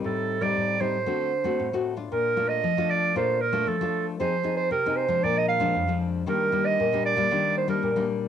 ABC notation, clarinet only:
X:1
M:4/4
L:1/16
Q:1/4=116
K:Bb
V:1 name="Clarinet"
A3 d3 c8 z2 | B3 e3 d2 c2 B2 A3 z | c3 c B2 c2 d e f4 z2 | B3 e3 d4 c B3 z2 |]